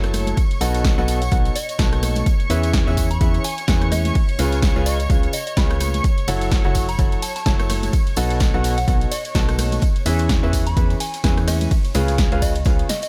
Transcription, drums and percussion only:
0.03 cross-stick, closed hi-hat, tambourine
0.13 cross-stick, closed hi-hat, open hi-hat, tambourine, high conga
0.27 closed hi-hat, tambourine, high conga
0.37 kick, closed hi-hat, open hi-hat, tambourine
0.51 closed hi-hat, tambourine
0.61 closed hi-hat, open hi-hat, tambourine
0.74 snare, closed hi-hat, tambourine
0.84 kick, snare, closed hi-hat, tambourine
0.98 tambourine
1.08 closed hi-hat, open hi-hat, tambourine
1.22 closed hi-hat, tambourine
1.31 kick, closed hi-hat, tambourine
1.45 closed hi-hat, tambourine
1.56 closed hi-hat, open hi-hat, tambourine
1.69 closed hi-hat, tambourine
1.78 kick, snare, closed hi-hat, tambourine
1.93 cross-stick, closed hi-hat, tambourine
2.03 cross-stick, closed hi-hat, open hi-hat, tambourine, high conga
2.16 closed hi-hat, tambourine, high conga
2.26 kick, closed hi-hat, tambourine
2.40 closed hi-hat, tambourine
2.49 closed hi-hat, open hi-hat, tambourine
2.63 closed hi-hat, tambourine
2.73 kick, snare, closed hi-hat, tambourine
2.87 tambourine
2.97 kick, closed hi-hat, open hi-hat, tambourine
3.11 closed hi-hat, tambourine
3.21 kick, closed hi-hat, tambourine
3.34 closed hi-hat, tambourine
3.44 closed hi-hat, open hi-hat, tambourine
3.58 snare, closed hi-hat, tambourine
3.68 kick, snare, closed hi-hat, tambourine
3.81 cross-stick, closed hi-hat, tambourine
3.92 cross-stick, closed hi-hat, open hi-hat, tambourine, high conga
4.05 closed hi-hat, tambourine, high conga
4.15 kick, closed hi-hat, open hi-hat, tambourine
4.29 closed hi-hat, tambourine
4.39 closed hi-hat, open hi-hat, tambourine
4.52 snare, closed hi-hat, tambourine
4.62 kick, snare, closed hi-hat, tambourine
4.76 tambourine
4.86 closed hi-hat, open hi-hat, tambourine
5.00 closed hi-hat, tambourine
5.10 kick, closed hi-hat, tambourine
5.23 closed hi-hat, tambourine
5.33 closed hi-hat, open hi-hat, tambourine
5.47 closed hi-hat, tambourine
5.57 kick, snare, closed hi-hat, tambourine
5.70 cross-stick, closed hi-hat, tambourine
5.80 cross-stick, closed hi-hat, open hi-hat, tambourine, high conga
5.94 closed hi-hat, tambourine, high conga
6.04 kick, closed hi-hat, tambourine
6.17 closed hi-hat, tambourine
6.28 closed hi-hat, open hi-hat, ride, tambourine
6.41 closed hi-hat, tambourine
6.51 kick, snare, closed hi-hat, tambourine
6.64 tambourine
6.75 kick, closed hi-hat, open hi-hat, ride, tambourine
6.89 closed hi-hat, tambourine
6.98 kick, closed hi-hat, tambourine
7.12 closed hi-hat, tambourine
7.22 closed hi-hat, open hi-hat, ride, tambourine
7.36 snare, closed hi-hat, tambourine
7.46 kick, snare, closed hi-hat, tambourine
7.60 cross-stick, closed hi-hat, tambourine
7.69 cross-stick, closed hi-hat, open hi-hat, ride, tambourine, high conga
7.83 closed hi-hat, tambourine, high conga
7.93 kick, closed hi-hat, open hi-hat, tambourine
8.07 closed hi-hat, tambourine
8.16 closed hi-hat, open hi-hat, ride, tambourine
8.30 snare, closed hi-hat, tambourine
8.40 kick, snare, closed hi-hat, tambourine
8.54 tambourine
8.64 closed hi-hat, open hi-hat, ride, tambourine
8.78 closed hi-hat, tambourine
8.88 kick, closed hi-hat, tambourine
9.01 closed hi-hat, tambourine
9.11 closed hi-hat, open hi-hat, ride, tambourine
9.25 closed hi-hat, tambourine
9.35 kick, snare, closed hi-hat, tambourine
9.48 cross-stick, closed hi-hat, tambourine
9.58 cross-stick, closed hi-hat, open hi-hat, ride, tambourine, high conga
9.72 closed hi-hat, tambourine, high conga
9.81 kick, closed hi-hat, tambourine
9.96 closed hi-hat, tambourine
10.06 closed hi-hat, open hi-hat, ride, tambourine
10.19 closed hi-hat, tambourine
10.29 kick, snare, closed hi-hat, tambourine
10.43 tambourine
10.53 kick, closed hi-hat, open hi-hat, ride, tambourine
10.67 closed hi-hat, tambourine
10.77 kick, closed hi-hat, tambourine
10.90 closed hi-hat, tambourine
11.00 closed hi-hat, open hi-hat, ride, tambourine
11.14 snare, closed hi-hat, tambourine
11.24 kick, snare, closed hi-hat, tambourine
11.37 cross-stick, closed hi-hat, tambourine
11.47 cross-stick, snare, closed hi-hat, open hi-hat, ride, tambourine, high conga
11.61 closed hi-hat, tambourine, high conga
11.71 kick, closed hi-hat, open hi-hat, tambourine
11.85 closed hi-hat, tambourine
11.94 closed hi-hat, open hi-hat, ride, tambourine, high conga
12.08 snare, closed hi-hat, tambourine
12.18 kick, snare, closed hi-hat, tambourine
12.31 closed hi-hat, tambourine
12.42 kick, closed hi-hat, open hi-hat, ride, tambourine
12.55 closed hi-hat, tambourine
12.65 kick, snare, closed hi-hat, tambourine
12.79 closed hi-hat, tambourine
12.89 snare, open hi-hat, ride, tambourine
13.02 closed hi-hat, tambourine

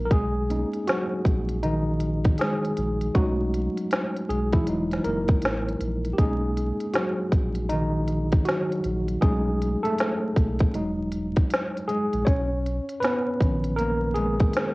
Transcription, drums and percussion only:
0.11 kick, closed hi-hat
0.50 closed hi-hat
0.73 closed hi-hat
0.87 snare, closed hi-hat
1.25 kick, closed hi-hat
1.49 closed hi-hat
1.63 closed hi-hat
2.00 closed hi-hat
2.25 kick, closed hi-hat
2.38 snare, closed hi-hat
2.65 closed hi-hat
2.77 closed hi-hat
3.01 closed hi-hat
3.15 kick, closed hi-hat
3.54 closed hi-hat
3.77 closed hi-hat
3.91 snare, closed hi-hat
4.17 closed hi-hat
4.30 closed hi-hat
4.53 kick, closed hi-hat
4.67 closed hi-hat
4.91 snare, closed hi-hat
5.05 closed hi-hat
5.28 kick, closed hi-hat
5.42 snare, closed hi-hat
5.69 closed hi-hat
5.81 closed hi-hat
6.05 closed hi-hat
6.18 kick, closed hi-hat
6.57 closed hi-hat
6.80 closed hi-hat
6.94 snare, closed hi-hat
7.32 kick, closed hi-hat
7.55 closed hi-hat
7.69 closed hi-hat
8.08 closed hi-hat
8.32 kick, closed hi-hat
8.45 snare, closed hi-hat
8.72 closed hi-hat
8.84 closed hi-hat
9.08 closed hi-hat
9.22 kick, closed hi-hat
9.62 closed hi-hat
9.85 closed hi-hat
9.98 snare, closed hi-hat
10.36 kick, closed hi-hat
10.59 kick, closed hi-hat
10.74 closed hi-hat
11.12 closed hi-hat
11.36 kick, closed hi-hat
11.50 snare, closed hi-hat
11.77 closed hi-hat
11.89 closed hi-hat
12.13 closed hi-hat
12.27 kick, closed hi-hat
12.66 closed hi-hat
12.89 closed hi-hat
13.03 snare, closed hi-hat
13.40 kick, closed hi-hat
13.64 closed hi-hat
13.79 closed hi-hat
14.16 closed hi-hat
14.40 kick, closed hi-hat
14.53 snare, closed hi-hat

